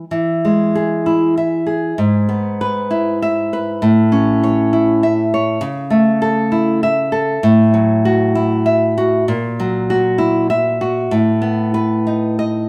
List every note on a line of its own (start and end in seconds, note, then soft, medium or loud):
0.11 1.93 E3 medium
0.45 1.36 G#3 soft
0.75 1.65 G#4 medium
1.06 1.37 E4 soft
1.37 1.98 E5 soft
1.66 1.98 G#4 soft
1.98 3.78 G#2 medium
2.29 3.21 B3 soft
2.61 3.22 B4 medium
2.91 3.82 E4 soft
3.22 3.82 E5 medium
3.53 3.82 B4 medium
3.82 5.58 A2 medium
4.12 5.02 C#4 medium
4.44 5.33 C#5 medium
4.73 5.62 E4 medium
5.03 5.62 E5 medium
5.34 5.63 C#5 medium
5.61 7.38 C#3 medium
5.90 6.81 A3 medium
6.22 7.11 A4 medium
6.52 6.83 E4 medium
6.83 7.43 E5 medium
7.12 7.43 A4 medium
7.43 9.23 A2 medium
7.74 8.65 F#3 medium
8.05 8.96 F#4 medium
8.35 9.27 E4 medium
8.66 9.27 E5 medium
8.98 9.28 F#4 medium
9.28 11.08 A#2 medium
9.60 10.50 F#3 medium
9.90 10.80 F#4 medium
10.18 10.49 E4 medium
10.50 11.11 E5 medium
10.81 11.11 F#4 medium
11.11 12.69 A2 medium
11.42 12.38 B3 medium
11.74 12.38 B4 medium
12.07 12.69 D#4 medium
12.39 12.69 D#5 medium